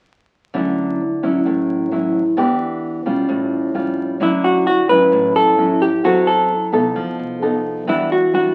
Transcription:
0.54 upright bass D2, nylon-string guitar D3 F#3 C#4 E4
1.23 upright bass A1, nylon-string guitar F#3 C#4 E4
1.45 upright bass A1, nylon-string guitar A2
1.91 upright bass A1, nylon-string guitar F#3 C#4 E4
2.37 upright bass E2, nylon-string guitar E3 B3 D4 G4
3.06 upright bass B1, nylon-string guitar G3 C#4 F4
3.29 upright bass A1, nylon-string guitar A2
3.74 upright bass F2, nylon-string guitar G3 C#4 F4
4.20 upright bass D2, nylon-string guitar D3 F#3 C#4 E4, hollow-body jazz guitar E4
4.44 hollow-body jazz guitar F#4
4.67 hollow-body jazz guitar F#4
4.89 upright bass A1, nylon-string guitar F#3 C#4 E4, hollow-body jazz guitar B4
5.12 upright bass A1, nylon-string guitar A2
5.36 upright bass A1, hollow-body jazz guitar A4
5.58 nylon-string guitar F#3 C#4 E4
5.82 hollow-body jazz guitar G4
6.04 upright bass F#2, nylon-string guitar F#3 C4 E4 A4, hollow-body jazz guitar F#4
6.27 hollow-body jazz guitar A4
6.72 upright bass C3, nylon-string guitar B3 D#4 A4
6.96 upright bass F2, nylon-string guitar F3
7.19 upright bass C2
7.42 nylon-string guitar B3 D#4 A4
7.87 upright bass E2, nylon-string guitar E3 G3 D4 F#4, hollow-body jazz guitar E4
8.12 hollow-body jazz guitar F#4
8.33 nylon-string guitar G3 D4 F#4, hollow-body jazz guitar F#4

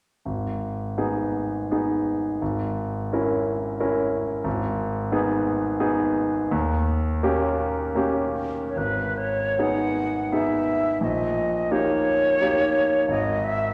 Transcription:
0.25 grand piano G#1
0.98 grand piano B3 D#4 G#4
1.71 grand piano B3 D#4 G#4
2.42 grand piano G#1
3.13 grand piano C#4 E4 A#4
3.80 grand piano C#4 E4 A#4
4.44 grand piano G#1
5.12 grand piano B3 D#4 G#4
5.80 grand piano B3 D#4 G#4
6.51 grand piano D#2
7.23 grand piano A#3 C#4 G4
7.95 grand piano A#3 C#4 G4
8.69 flute C#5
8.76 grand piano G#1, flute B4
9.17 flute C#5
9.59 grand piano B3 D#4 G#4, flute F#5
10.32 grand piano B3 D#4 G#4, flute E5
11.01 grand piano A#1, flute D#5
11.71 grand piano A#3 D#4 G4, flute C#5
12.41 grand piano A#3 D#4 G4
13.08 grand piano G#1, flute D#5
13.44 flute E5

